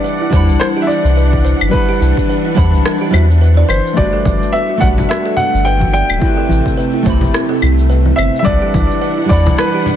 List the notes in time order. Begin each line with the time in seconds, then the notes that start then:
Already playing: E3 G3 D4 E4 B4 D5 F#5
0.04 B4, cabasa
0.22 E4
0.30 E2 G3 D4 E4 C5, kick, cabasa
0.35 F#5 B5
0.48 C2, cabasa
0.59 E4 C5, cross-stick, cabasa
0.77 G4
0.82 E5
0.87 E4 D5, cabasa
1.04 C2, cabasa
1.17 B4, cabasa
1.33 E4, kick
1.45 C5, cabasa
1.61 G1, cabasa, claves
1.68 G3 D4 E4 B4
1.73 E4 F#5 B5, kick, cabasa
1.89 G4
2.01 C2 E4, cabasa
2.17 kick, cabasa
2.29 B4, cabasa
2.45 E4
2.54 E2 G3 D4 E4 C5 F#5 B5, kick
2.58 cabasa
2.73 C2, cabasa
2.85 E4, cross-stick, cabasa
3.01 G4
3.10 E2 G3 D4 E4 F#4 B4 C5, claves
3.14 cabasa
3.31 cabasa
3.41 B4, cabasa
3.57 D5
3.69 G1 B4 C5, cabasa, claves
3.86 cabasa
3.93 A3 D4 F#4 D5
3.97 G1 G3 A3 F#4 B4, kick, cabasa
4.13 A4
4.25 G1 F#4, kick, high conga, cabasa
4.41 high bongo, cabasa
4.53 B4 E5, cabasa
4.69 F#4
4.77 A3 D4 F#4 D5 F#5
4.81 B1 G3 B4, kick, cabasa
4.97 G1, high bongo, high conga, low conga, cabasa
5.09 F#4 E5, cross-stick, cabasa
5.26 A4
5.37 F#4 F#5, high bongo, low conga, cabasa
5.54 G1, cabasa
5.65 B4 G5, cabasa
5.80 F#4, kick, high conga
5.93 D5 G5, high bongo, cabasa
6.09 D1, cabasa, claves
6.18 C3 A3 C4 E4, kick
6.23 G4 B4, cabasa
6.37 A4
6.49 A1 E4, high conga, cabasa
6.66 kick, cabasa
6.78 B4, cabasa
6.94 E4
7.03 C2 A3 C4 E4 C5, kick
7.07 G4 B5, cabasa
7.21 A1, high bongo, high conga, low conga, cabasa
7.34 E4, cross-stick, cabasa
7.49 A4
7.62 C2 E4, low conga, cabasa, claves
7.78 cabasa
7.90 B4, cabasa
8.05 E4, high bongo, high conga
8.16 G1 C5 E5, cabasa, claves
8.36 E5, cabasa
8.42 G3 D4 E4 D5
8.46 C2 E3 E4 B4 F#5, kick, cabasa
8.62 G4
8.74 C2 E4, kick, high conga, cabasa
8.91 high bongo, cabasa
9.02 B4, cabasa
9.18 E4
9.25 G3 D4 E4 D5
9.30 E2 C5 F#5 B5, kick, cabasa
9.46 C2, high bongo, high conga, low conga, cabasa
9.58 E4 B4, cross-stick, cabasa
9.74 G4
9.86 E4, high bongo, low conga, cabasa